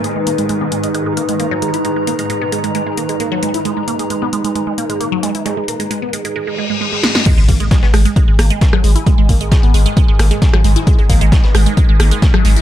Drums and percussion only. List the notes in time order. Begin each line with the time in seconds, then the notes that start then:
0.04 closed hi-hat
0.27 closed hi-hat
0.38 closed hi-hat
0.49 closed hi-hat
0.61 snare
0.72 closed hi-hat, open hi-hat
0.83 closed hi-hat
0.94 closed hi-hat
1.17 closed hi-hat
1.29 closed hi-hat
1.40 closed hi-hat
1.62 closed hi-hat
1.74 closed hi-hat
1.85 closed hi-hat
2.07 closed hi-hat
2.19 closed hi-hat
2.30 closed hi-hat
2.42 closed hi-hat
2.52 closed hi-hat
2.64 closed hi-hat
2.75 closed hi-hat
2.97 closed hi-hat
3.09 closed hi-hat
3.20 closed hi-hat
3.43 closed hi-hat
3.54 closed hi-hat
3.65 closed hi-hat
3.77 closed hi-hat
3.88 closed hi-hat
3.99 closed hi-hat
4.10 closed hi-hat
4.22 snare
4.33 closed hi-hat, open hi-hat
4.44 closed hi-hat
4.55 closed hi-hat
4.78 closed hi-hat
4.90 closed hi-hat
5.00 closed hi-hat
5.23 snare, closed hi-hat
5.35 closed hi-hat
5.46 snare, closed hi-hat
5.68 closed hi-hat
5.80 closed hi-hat
5.91 closed hi-hat
6.13 closed hi-hat
6.25 closed hi-hat
7.03 snare
7.15 snare
7.26 kick, closed hi-hat, crash
7.38 closed hi-hat
7.49 kick, closed hi-hat, open hi-hat
7.60 closed hi-hat
7.71 kick, snare, closed hi-hat
7.83 snare
7.94 cross-stick, open hi-hat
8.05 closed hi-hat
8.16 kick, closed hi-hat
8.39 cross-stick, closed hi-hat, open hi-hat
8.50 closed hi-hat
8.61 kick, snare, closed hi-hat
8.73 cross-stick
8.84 closed hi-hat, open hi-hat
8.96 closed hi-hat
9.06 kick, closed hi-hat
9.29 kick, closed hi-hat, open hi-hat
9.41 closed hi-hat
9.52 kick, snare, closed hi-hat
9.63 closed hi-hat
9.74 closed hi-hat, open hi-hat
9.86 closed hi-hat
9.97 kick, closed hi-hat
10.19 cross-stick, closed hi-hat, open hi-hat
10.31 closed hi-hat
10.42 kick, snare, closed hi-hat
10.53 cross-stick
10.64 closed hi-hat, open hi-hat
10.76 closed hi-hat
10.87 kick, closed hi-hat
10.99 closed hi-hat
11.09 kick, closed hi-hat, open hi-hat
11.21 closed hi-hat
11.32 kick, snare, closed hi-hat
11.44 snare
11.55 cross-stick, open hi-hat
11.66 closed hi-hat
11.77 kick, closed hi-hat
12.00 cross-stick, closed hi-hat, open hi-hat
12.11 closed hi-hat
12.22 kick, snare, closed hi-hat
12.34 cross-stick
12.45 closed hi-hat, open hi-hat
12.56 closed hi-hat